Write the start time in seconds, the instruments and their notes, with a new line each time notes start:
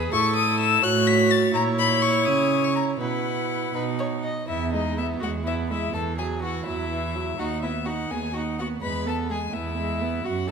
Already playing: cello E2, viola G#4, violin B4
0.12 cello A2, viola E4, violin A4 C#6
0.36 violin D#6
0.60 violin E6
0.82 cello A2, viola F#4, violin C#5 F#6
1.07 violin B6
1.31 violin A6
1.53 cello A#2, viola E4, violin C#5 A#5
1.79 violin B5
2.02 violin C#6
2.26 cello C#3, violin D#6
2.64 violin C#6
2.76 violin A#5
3.00 cello B2, viola E4, violin B4 F#5
3.75 cello B2, viola D#4, violin B4
3.99 violin C#5
4.24 violin D#5
4.48 cello E2, viola B3, violin E4 E5
4.72 viola G#3, violin D#4 D#5
4.97 viola B3, violin E4 E5
5.20 cello E2, viola G#3, violin F#4 F#5
5.44 viola B3, violin E4 E5
5.70 viola G#3, violin E4 E5
5.93 cello E2, viola E3, violin A4 A5
6.18 viola F#3, violin G#4 G#5
6.42 viola E3, violin F#4 F#5
6.66 cello E2, viola F#3, violin E4 E5
6.90 viola E3
7.15 viola F#3
7.38 cello D#2, viola D#4, violin F#4 F#5
7.62 viola B3, violin E4 E5
7.85 viola D#4, violin F#4 F#5
8.10 cello D#2, viola B3, violin G#4 G#5
8.33 viola D#4, violin F#4 F#5
8.59 viola B3, violin F#4 F#5
8.82 cello E2, viola G#3, violin B4 B5
9.06 viola B3, violin A4 A5
9.30 viola G#3, violin G#4 G#5
9.53 cello E2, viola B3, violin E4 E5
9.77 viola G#3
10.02 viola B3
10.24 cello F#2, violin F#4 F#5, viola F#4
10.47 viola D#4, violin A4